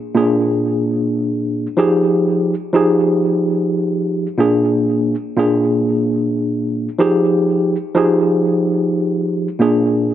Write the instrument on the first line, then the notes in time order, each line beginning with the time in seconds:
tine electric piano
0.15 A#2 A#3 D4 G#4
1.77 F3 D#4 G4 G#4
2.73 F3 D#4 G4 G#4
4.38 A#2 A#3 D4 G#4
5.36 A#2 A#3 D4 G#4
6.98 F3 D#4 G4 G#4
7.95 F3 D#4 G4 G#4
9.59 A#2 A#3 D4 G#4